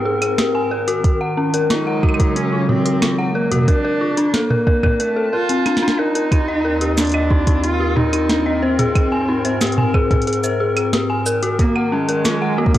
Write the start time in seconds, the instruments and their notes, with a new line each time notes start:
Already playing: ambient pad G#2 C4 F4 A#4, cello C4
0.05 synth bell G#4
0.22 synth bell G#4, closed hi-hat, claves
0.38 synth bell G4, snare, closed hi-hat
0.55 synth bell G#5
0.71 ambient pad D#3, synth bell A#4
0.88 synth bell F#4, closed hi-hat
1.04 synth bell F#4, kick, closed hi-hat
1.21 synth bell F#5
1.37 synth bell C#4
1.42 ambient pad F#3 G#3
1.54 synth bell A#4, closed hi-hat
1.70 cello D#4, synth bell F4, snare, closed hi-hat
1.80 ambient pad C#3
1.87 synth bell F#5
2.03 synth bell F#4, kick, claves
2.09 claves
2.14 claves
2.20 synth bell F#4, kick, closed hi-hat
2.36 cello C#4, synth bell F#4, closed hi-hat
2.53 synth bell F4
2.69 cello C4, synth bell F#4, mid tom
2.85 synth bell F#4, closed hi-hat
3.02 synth bell F4, snare, closed hi-hat, claves
3.18 synth bell F#5
3.35 cello A#3, synth bell A#4
3.51 synth bell F#4, closed hi-hat, mid tom
3.54 mid tom
3.56 mid tom
3.59 mid tom
3.61 mid tom
3.63 mid tom
3.66 cello D4, synth bell A#4, kick, closed hi-hat, mid tom
3.85 synth bell A#4
4.01 synth bell F4
4.17 synth bell D4, closed hi-hat
4.34 cello A#3, synth bell A4, snare, closed hi-hat
4.50 ambient pad C4, synth bell A#4, mid tom
4.67 synth bell A#4, kick
4.83 ambient pad F4 A5, synth bell A#4, kick, mid tom, claves
5.00 cello A3, synth bell A#4, closed hi-hat
5.16 synth bell A4
5.33 cello F4, synth bell A#4
5.49 synth bell C4, closed hi-hat
5.66 synth bell D4, snare, closed hi-hat, claves
5.77 snare
5.82 synth bell D4
5.88 snare
5.99 cello D#4, synth bell A#4
6.15 synth bell A#4, closed hi-hat
6.32 ambient pad D#2, synth bell D#4, kick, closed hi-hat, claves
6.48 synth bell D#5
6.65 synth bell A#4
6.81 synth bell G4, closed hi-hat
6.98 cello D4, synth bell D4, snare, closed hi-hat, shaker
7.00 closed hi-hat
7.02 closed hi-hat
7.05 closed hi-hat
7.07 closed hi-hat
7.09 closed hi-hat
7.12 synth bell D#5, closed hi-hat, claves
7.19 ambient pad A#4
7.31 synth bell D#4, kick
7.47 synth bell D#4, kick, closed hi-hat
7.63 synth bell D#4, cello F4, closed hi-hat
7.80 synth bell G4
7.96 cello D#4, synth bell D#4, mid tom
8.13 synth bell D#4, closed hi-hat, claves
8.29 synth bell D4, snare, closed hi-hat
8.46 synth bell D#5
8.62 ambient pad G#2, cello C4, synth bell C5
8.79 synth bell G#4, closed hi-hat, mid tom
8.95 synth bell G#4, kick, closed hi-hat, claves
9.12 synth bell G#5
9.28 synth bell D#4
9.45 synth bell C5, closed hi-hat
9.61 synth bell G4, snare, closed hi-hat, shaker
9.67 closed hi-hat
9.72 closed hi-hat
9.78 synth bell G#5, mid tom
9.94 synth bell G#4, kick, claves
10.11 synth bell G#4, kick, closed hi-hat, mid tom
10.22 closed hi-hat
10.27 synth bell G#4, closed hi-hat
10.33 closed hi-hat
10.44 synth bell C5, shaker
10.60 synth bell G#4
10.77 synth bell G#4, closed hi-hat, claves
10.93 synth bell G4, snare, closed hi-hat
11.10 synth bell G#5
11.26 ambient pad D#3, synth bell A#4, shaker
11.43 synth bell F#4, closed hi-hat
11.59 cello A#3, synth bell F#4, kick, closed hi-hat
11.76 synth bell F#5, claves
11.80 ambient pad G#3
11.92 cello G#3, synth bell C#4
12.05 ambient pad F#3 C#4, synth bell A#4, closed hi-hat
12.25 synth bell F4, snare, closed hi-hat, shaker
12.42 synth bell F#5
12.58 cello A#3, synth bell F#4
12.66 kick
12.74 synth bell F#4, kick, closed hi-hat